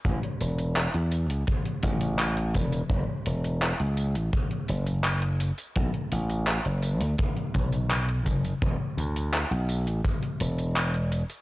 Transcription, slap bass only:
\new Staff \with { instrumentName = "Slap bass" } { \clef bass \time 4/4 \key b \minor \tempo 4 = 84 a,,16 r16 e,,8. e,8 cis,16 r8 a,,4 e,,16 r16 | fis,,16 r16 e,,8. cis,8 a,,16 r8 fis,,4~ fis,,16 r16 | b,,16 r16 a,,8. fis,,8 d,16 r8 b,,4 fis,,16 r16 | e,,16 r16 d,8. b,,8 a,,16 r8 e,,4~ e,,16 r16 | }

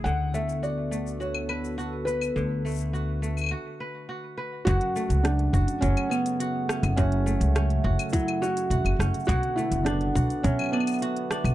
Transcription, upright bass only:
\new Staff \with { instrumentName = "Upright bass" } { \clef bass \time 4/4 \key fis \minor \tempo 4 = 104 d,1 | d,2 r2 | fis,,16 r8 cis,8. fis,,16 r16 fis,,16 r4. fis,,16~ | fis,,8. cis,8. fis,,16 r4 r16 e,,16 fis,,16 fis,,16 r16 |
b,,16 r8 fis,,8. b,,16 r16 b,,16 r4. b,,16 | }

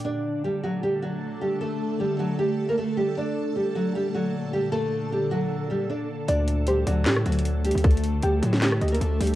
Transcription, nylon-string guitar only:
\new Staff \with { instrumentName = "Nylon-string guitar" } { \time 4/4 \key d \phrygian \tempo 4 = 154 <d' d''>4 <g g'>8 <fis fis'>8 <g g'>8 <fis fis'>4 <g g'>8 | <a a'>4 <g g'>8 <fis fis'>8 <g g'>8. <bes bes'>16 <a a'>8 <g g'>8 | <d' d''>4 <g g'>8 <fis fis'>8 <g g'>8 <fis fis'>4 <g g'>8 | <a a'>4 <g g'>8 <fis fis'>4 <g g'>8 <d' d''>8 r8 |
<d' d''>4 <g g'>8 <fis fis'>8 <g g'>8 <fis fis'>4 <g g'>8 | <a a'>4 <g g'>8 <fis fis'>8 <g g'>8. <bes bes'>16 <a a'>8 <g g'>8 | }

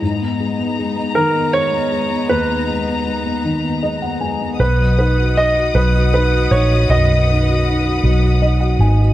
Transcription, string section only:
\new Staff \with { instrumentName = "String section" } { \time 6/8 \key b \major \tempo 4. = 52 <gis b dis' ais''>2.~ | <gis b dis' ais''>2. | <b' dis'' fis'' dis'''>2.~ | <b' dis'' fis'' dis'''>2. | }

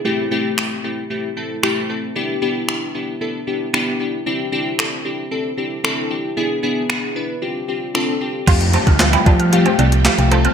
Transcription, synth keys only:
\new Staff \with { instrumentName = "Synth keys" } { \time 4/4 \key f \lydian \tempo 4 = 114 <a c' e' g'>8 <a c' e' g'>8 <a c' e' g'>8 <a c' e' g'>8 <a c' e' g'>8 <a c' e' a'>8 <a c' e' g'>8 <a c' e' a'>8 | <b d' e' g'>8 <b d' e' g'>8 <b d' e' g'>8 <b d' e' g'>8 <b d' e' a'>8 <b d' e' g'>8 <b d' e' g'>8 <b d' e' g'>8 | <c' d' e' g'>8 <c' d' e' g'>8 <c' d' e' a'>8 <c' d' e' g'>8 <c' d' e' a'>8 <c' d' e' g'>8 <c' d' e' a'>8 <c' d' e' g'>8 | <b d' e' gis'>8 <b d' e' gis'>8 <b d' e' gis'>8 <b d' e' b'>8 <c' d' f' g'>8 <c' d' f' g'>8 <c' d' f' a'>8 <c' d' f' g'>8 |
<a c' f' g'>8 <a c' f' g'>8 <a c' f' g'>8 <a c' f' g'>8 <a c' f' g'>8 <a c' f' g'>8 <a c' f' g'>8 <a c' f' a'>8 | }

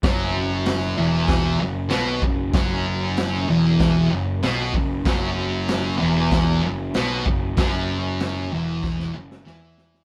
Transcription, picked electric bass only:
\new Staff \with { instrumentName = "Picked electric bass" } { \clef bass \time 4/4 \key e \mixolydian \tempo 4 = 95 fis,,4. e,,4 fis,,8 b,,8 fis,,8 | fis,,4. e,,4 fis,,8 b,,8 fis,,8 | fis,,4. e,,4 fis,,8 b,,8 fis,,8 | fis,,4. e,,4 fis,,8 e,4 | }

